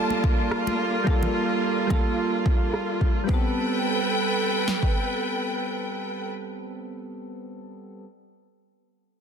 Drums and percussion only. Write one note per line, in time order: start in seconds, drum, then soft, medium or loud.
0.10 high conga medium
0.10 cabasa soft
0.24 kick loud
0.39 closed hi-hat soft
0.39 cabasa medium
0.51 cross-stick medium
0.51 closed hi-hat soft
0.51 cabasa medium
0.67 high conga medium
0.94 closed hi-hat soft
0.94 cabasa medium
1.07 kick loud
1.07 closed hi-hat soft
1.23 low conga medium
1.35 closed hi-hat soft
1.42 closed hi-hat soft
1.49 closed hi-hat soft
1.62 closed hi-hat soft
1.90 kick loud
1.90 high conga soft
1.90 low conga medium
2.05 closed hi-hat soft
2.18 closed hi-hat soft
2.46 kick loud
2.74 cross-stick medium
2.74 closed hi-hat soft
3.01 kick medium
3.16 closed hi-hat soft
3.29 kick loud
4.68 snare medium
4.83 kick medium